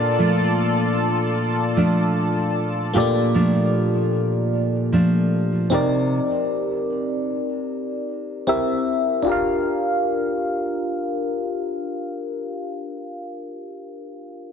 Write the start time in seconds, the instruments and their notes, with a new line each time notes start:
Already playing: nylon-string guitar A#2 D4, fm electric piano A#3 D4 F4 A4 D5, analog synth pad F4 A4 D5 A5
0.19 nylon-string guitar F3 A3 D4
1.77 nylon-string guitar F3 A3 D4
2.93 nylon-string guitar A#2 D4, fm electric piano A3 F4 G4 A4
2.98 fm electric piano A#3 D5
3.34 nylon-string guitar F3 A3 D4
4.92 nylon-string guitar F3 A3 D4
5.70 nylon-string guitar C3, fm electric piano C4 D#4 G4 A#4
5.74 fm electric piano D5
8.47 fm electric piano C4 E4 G4 A#4 E5
9.22 fm electric piano D4 F4
9.27 fm electric piano G4 A#4
9.32 fm electric piano F5